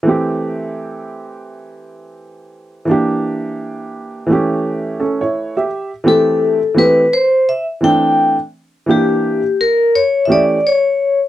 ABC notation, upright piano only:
X:1
M:4/4
L:1/16
Q:"Swing 16ths" 1/4=85
K:Am
V:1 name="Upright piano"
z16 | z12 [^CA] [E^c]2 [Ge]- | [Ge] z12 z3 | z16 |]
V:2 name="Upright piano"
[E,A,CG]16 | [E,_B,DG]8 [E,A,^CG]8 | z2 [E,A,CG]2 z2 [E,A,CG]2 z4 [E,A,CD]2 z2 | z2 [E,_B,DG]2 z6 [E,A,^CG]2 z4 |]